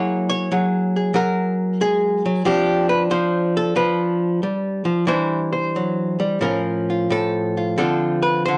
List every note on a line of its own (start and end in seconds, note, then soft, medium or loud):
0.00 0.51 F#3 medium
0.00 1.81 A#3 soft
0.00 2.44 E4 soft
0.00 0.50 G#4 soft
0.00 0.28 C#5 loud
0.30 1.15 C#5 medium
0.52 1.13 F#3 medium
0.52 0.95 G#4 soft
0.96 1.80 G#4 soft
1.14 2.24 F#3 medium
1.14 2.46 A#4 medium
1.81 2.25 G#3 medium
1.81 2.47 G#4 medium
2.26 2.45 F#3 medium
2.45 3.10 F3 medium
2.45 5.07 C4 soft
2.45 5.07 D4 soft
2.45 2.89 G4 medium
2.89 3.02 B4 medium
3.11 3.74 F3 medium
3.11 3.56 C5 medium
3.57 3.76 A4 medium
3.76 4.42 F3 medium
3.76 5.08 B4 medium
4.43 4.85 G3 medium
4.85 5.07 F3 medium
5.07 6.39 E3 medium
5.07 5.75 G3 soft
5.07 6.40 D4 soft
5.07 6.40 E4 soft
5.07 5.51 C5 medium
5.52 6.42 C5 medium
5.76 6.19 F#3 soft
6.19 6.41 G3 medium
6.41 7.09 A2 medium
6.41 7.79 F3 soft
6.41 7.77 C#4 soft
6.41 6.89 F4 soft
6.41 7.11 A#4 medium
6.90 7.57 F4 soft
7.10 7.77 A2 medium
7.10 7.77 A4 medium
7.57 7.80 F4 soft
7.78 8.47 D3 medium
7.78 8.58 F3 soft
7.78 8.58 C4 soft
7.78 8.58 F4 soft
7.78 8.22 A4 medium
8.22 8.45 B4 medium
8.45 8.58 D3 medium
8.45 8.58 C5 medium